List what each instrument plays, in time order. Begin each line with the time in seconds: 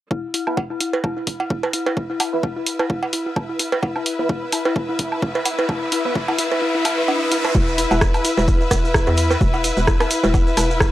0.11 synth bell E4, string section E4, kick
0.34 synth bell E4, open hi-hat
0.47 synth stab B3 E4 B4, synth bell E4, low woodblock
0.57 kick, cowbell
0.68 synth bell E4, string section B4
0.81 synth bell E4, open hi-hat
0.93 cowbell
1.04 synth bell E4, kick, low woodblock
1.17 synth bell E4
1.27 kick, open hi-hat
1.36 string section E5
1.40 synth bell E4, cowbell
1.50 synth bell E4, kick
1.63 cowbell, low woodblock
1.73 synth bell E4, open hi-hat
1.86 synth bell E4, cowbell
1.97 kick
2.10 synth bell E4
2.20 synth bell E4, open hi-hat, cowbell, low woodblock
2.33 synth stab B3 E4 B4
2.43 synth bell E4, kick
2.56 synth bell E4
2.66 open hi-hat
2.79 synth bell E4, cowbell, low woodblock
2.90 synth bell E4, kick
3.03 cowbell
3.13 synth bell E4, open hi-hat
3.26 synth bell E4
3.36 kick, low woodblock
3.49 synth bell E4
3.59 synth bell E4, open hi-hat
3.72 cowbell
3.83 synth bell E4, kick, cowbell, riser
3.96 synth bell E4, low woodblock
4.06 open hi-hat
4.19 synth stab B3 E4 B4, synth bell E4
4.29 synth bell E4, kick
4.52 synth bell E4, open hi-hat, low woodblock
4.65 synth bell E4, cowbell
4.76 kick
4.89 synth bell E4
4.99 synth bell E4, kick, open hi-hat
5.12 low woodblock
5.22 synth bell E4, kick
5.35 synth bell E4, cowbell
5.46 open hi-hat, cowbell
5.59 synth bell E4, cowbell
5.69 synth bell E4, kick, low woodblock
5.92 synth bell E4, open hi-hat
6.05 synth stab B3 E4 B4, synth bell E4
6.15 kick
6.28 synth bell E4, cowbell, low woodblock
6.39 synth bell E4, open hi-hat
6.52 cowbell
6.62 synth bell E4
6.75 synth bell E4
6.85 synth bell E4, open hi-hat, low woodblock
6.98 synth bell B4
7.08 synth bell D4, cowbell
7.32 synth bell E4, open hi-hat
7.44 synth bell B4, cowbell, low woodblock
7.55 fm bass E1, synth bell E4, kick, maracas
7.68 maracas
7.78 synth bell E4, open hi-hat, maracas
7.91 fm bass E1, synth stab B3 E4 B4, synth bell E4, cowbell, low woodblock, maracas
8.01 kick, cross-stick, maracas
8.14 synth bell E4, open hi-hat, low woodblock, maracas
8.25 synth bell E4, open hi-hat, maracas
8.37 fm bass E1, cowbell, maracas
8.48 synth bell E4, kick, maracas
8.61 synth bell E4, maracas
8.71 fm bass E1, kick, cross-stick, open hi-hat, cowbell, maracas
8.84 synth bell E4, maracas
8.94 synth bell E4, kick, cross-stick, maracas
9.07 fm bass E2, cowbell, maracas
9.17 synth bell E4, open hi-hat, maracas
9.30 synth bell E4, cross-stick, cowbell, maracas
9.41 fm bass E1, kick, maracas
9.54 synth bell E4, cowbell, maracas
9.64 synth bell E4, open hi-hat, maracas
9.77 fm bass E1, synth stab B3 E4 B4, maracas
9.87 synth bell E4, kick, cross-stick, maracas
10.00 synth bell E4, cross-stick, open hi-hat, low woodblock, maracas
10.11 open hi-hat, maracas
10.23 fm bass E1, synth bell E4, cowbell, maracas
10.34 synth bell E4, kick, cowbell, maracas
10.47 maracas
10.57 fm bass E1, synth bell E4, cross-stick, open hi-hat, low woodblock, maracas
10.70 synth bell E4, maracas
10.80 kick, cross-stick, maracas